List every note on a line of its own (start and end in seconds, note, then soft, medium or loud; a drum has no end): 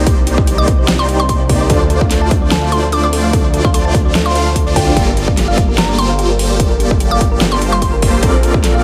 0.00 1.68 C2 medium
0.00 1.67 C3 medium
0.00 1.67 G3 medium
0.00 1.67 A#3 medium
0.00 1.67 D#4 medium
0.00 8.19 D5 medium
0.07 0.56 A#3 medium
0.07 0.14 G4 loud
0.07 0.56 G4 medium
0.07 0.56 C5 medium
0.07 0.56 D5 loud
0.07 kick loud
0.07 closed hi-hat medium
0.17 0.24 C5 medium
0.27 0.32 G4 medium
0.27 closed hi-hat medium
0.38 0.42 D5 medium
0.38 kick loud
0.47 0.50 G4 medium
0.47 closed hi-hat medium
0.58 1.06 A#3 medium
0.58 1.06 D#4 medium
0.58 1.06 G4 medium
0.58 1.06 C5 medium
0.58 1.06 D5 loud
0.58 0.63 D#5 loud
0.58 0.70 D6 medium
0.68 0.71 G4 medium
0.68 kick loud
0.68 closed hi-hat medium
0.79 0.83 C5 medium
0.88 0.96 G4 loud
0.88 snare loud
0.88 closed hi-hat medium
0.99 1.06 D5 medium
0.99 1.11 C6 medium
1.09 1.68 A#3 medium
1.09 1.68 D#4 medium
1.09 1.14 G4 medium
1.09 1.68 G4 medium
1.09 1.68 C5 medium
1.09 1.68 D5 loud
1.09 closed hi-hat medium
1.20 1.22 D#5 medium
1.20 1.26 C6 medium
1.29 1.32 G4 medium
1.29 1.36 C6 medium
1.29 kick medium
1.29 closed hi-hat medium
1.40 1.44 C5 loud
1.49 1.54 G4 medium
1.49 kick loud
1.49 open hi-hat medium
1.60 1.67 D5 medium
1.70 4.95 D2 medium
1.70 4.93 F3 medium
1.70 2.19 A3 medium
1.70 4.93 C4 medium
1.70 2.19 D4 medium
1.70 2.19 F4 medium
1.70 1.77 A4 loud
1.70 2.19 C5 medium
1.70 2.19 D5 loud
1.70 kick loud
1.70 closed hi-hat medium
1.81 1.87 D5 medium
1.90 1.95 A4 medium
1.90 closed hi-hat medium
2.01 2.05 F5 medium
2.01 kick loud
2.11 2.14 A4 medium
2.11 snare soft
2.11 closed hi-hat medium
2.21 2.70 A3 medium
2.21 2.70 D4 medium
2.21 2.70 F4 medium
2.21 2.70 C5 medium
2.21 2.70 D5 loud
2.21 2.26 A5 loud
2.31 2.34 A4 medium
2.31 kick loud
2.31 closed hi-hat medium
2.42 2.46 D5 medium
2.51 2.59 A4 loud
2.51 2.70 A5 medium
2.51 snare loud
2.51 closed hi-hat medium
2.62 2.69 F5 medium
2.72 3.31 A3 medium
2.72 3.31 D4 medium
2.72 3.31 F4 medium
2.72 2.77 A4 medium
2.72 3.31 C5 medium
2.72 3.31 D5 medium
2.72 2.85 C6 medium
2.72 closed hi-hat medium
2.83 2.85 A5 medium
2.92 2.95 A4 medium
2.92 2.99 D6 medium
2.92 closed hi-hat medium
3.03 3.08 D5 loud
3.03 3.09 D6 medium
3.13 3.18 A4 medium
3.13 open hi-hat medium
3.24 3.30 F5 medium
3.33 3.41 A4 loud
3.33 kick loud
3.33 closed hi-hat medium
3.44 3.51 D5 medium
3.54 3.59 A4 medium
3.54 closed hi-hat medium
3.65 3.69 F5 medium
3.65 3.71 C6 medium
3.65 kick loud
3.74 3.77 A4 medium
3.74 3.81 C6 medium
3.74 closed hi-hat medium
3.85 4.33 A3 medium
3.85 4.33 D4 medium
3.85 4.33 F4 medium
3.85 4.33 C5 medium
3.85 4.33 D5 loud
3.85 3.89 A5 loud
3.94 3.98 A4 medium
3.94 kick loud
3.94 closed hi-hat medium
4.05 4.10 D5 medium
4.15 4.22 A4 loud
4.15 snare loud
4.15 closed hi-hat medium
4.26 4.32 F5 medium
4.26 4.74 C6 medium
4.35 4.47 A3 loud
4.35 4.47 D4 medium
4.35 4.47 F4 medium
4.35 4.40 A4 medium
4.35 4.47 C5 medium
4.35 4.47 F5 loud
4.35 closed hi-hat medium
4.46 4.49 A5 medium
4.56 4.59 A4 medium
4.56 kick medium
4.56 closed hi-hat medium
4.66 4.94 A3 medium
4.66 4.94 D4 medium
4.66 4.94 F4 medium
4.66 4.94 C5 medium
4.66 4.94 D5 loud
4.66 4.71 D5 loud
4.76 4.81 A4 medium
4.76 5.01 G5 medium
4.76 kick loud
4.76 open hi-hat medium
4.87 4.93 F5 medium
4.96 8.21 G1 medium
4.96 8.20 G3 medium
4.96 8.20 A#3 medium
4.96 5.46 A#3 medium
4.96 8.20 F4 medium
4.96 5.46 F4 medium
4.96 5.45 G4 medium
4.96 5.04 G4 loud
4.96 5.46 A4 medium
4.96 8.20 A4 medium
4.96 5.46 D5 loud
4.96 kick loud
4.96 closed hi-hat medium
5.07 5.14 A#4 medium
5.17 5.22 G4 medium
5.17 closed hi-hat medium
5.28 5.32 D5 medium
5.28 kick loud
5.37 5.40 G4 medium
5.37 snare soft
5.37 closed hi-hat medium
5.48 5.96 A#3 medium
5.48 5.96 F4 medium
5.48 5.96 G4 medium
5.48 5.96 A4 medium
5.48 5.96 D5 loud
5.48 5.52 F5 loud
5.58 5.61 G4 medium
5.58 kick loud
5.58 closed hi-hat medium
5.69 5.73 A#4 medium
5.78 5.85 G4 loud
5.78 5.97 A#5 medium
5.78 snare loud
5.78 closed hi-hat medium
5.89 5.95 D5 medium
5.98 6.57 A#3 medium
5.98 6.57 F4 medium
5.98 6.57 G4 medium
5.98 6.03 G4 medium
5.98 6.57 A4 medium
5.98 6.57 C5 loud
5.98 6.11 C6 medium
5.98 closed hi-hat medium
6.09 6.12 F5 medium
6.19 6.22 G4 medium
6.19 closed hi-hat medium
6.30 6.34 A#4 loud
6.39 6.44 G4 medium
6.39 open hi-hat medium
6.50 6.57 D5 medium
6.60 7.09 A#3 medium
6.60 7.09 F4 medium
6.60 6.67 G4 loud
6.60 7.09 G4 medium
6.60 7.09 A4 medium
6.60 7.09 D5 loud
6.60 kick loud
6.60 closed hi-hat medium
6.70 6.77 A#4 medium
6.80 6.85 G4 medium
6.80 closed hi-hat medium
6.91 6.95 D5 medium
6.91 kick loud
7.00 7.03 G4 medium
7.00 closed hi-hat medium
7.11 7.59 A#3 medium
7.11 7.59 F4 medium
7.11 7.59 G4 medium
7.11 7.59 A4 medium
7.11 7.59 D5 loud
7.11 7.16 F5 loud
7.11 7.23 D6 medium
7.21 7.24 G4 medium
7.21 kick loud
7.21 closed hi-hat medium
7.32 7.36 A#4 medium
7.41 7.49 G4 loud
7.41 snare loud
7.41 closed hi-hat medium
7.52 7.59 D5 medium
7.52 7.64 C6 medium
7.61 8.21 A#3 medium
7.61 8.21 F4 medium
7.61 7.67 G4 medium
7.61 8.21 G4 medium
7.61 8.21 A4 medium
7.61 8.21 C5 loud
7.61 closed hi-hat medium
7.72 7.75 F5 medium
7.72 7.79 C6 medium
7.82 7.85 G4 medium
7.82 7.89 C6 medium
7.82 kick medium
7.82 closed hi-hat medium
7.93 7.97 A#4 loud
8.02 8.07 G4 medium
8.02 kick loud
8.02 open hi-hat loud
8.13 8.20 D5 medium
8.23 8.84 A#1 loud
8.23 8.84 A#3 medium
8.23 8.72 C4 medium
8.23 8.72 F4 medium
8.23 8.30 A4 loud
8.23 8.72 A4 medium
8.23 8.72 A#4 medium
8.23 8.84 D5 medium
8.23 8.72 D5 medium
8.23 kick loud
8.23 closed hi-hat medium
8.34 8.40 C5 medium
8.43 8.48 A4 medium
8.43 closed hi-hat medium
8.54 8.58 D5 medium
8.54 kick loud
8.64 8.67 A4 medium
8.64 snare soft
8.64 closed hi-hat medium
8.75 8.84 C4 medium
8.75 8.84 F4 medium
8.75 8.84 A4 medium
8.75 8.84 A#4 medium
8.75 8.84 D5 loud
8.75 8.79 F5 loud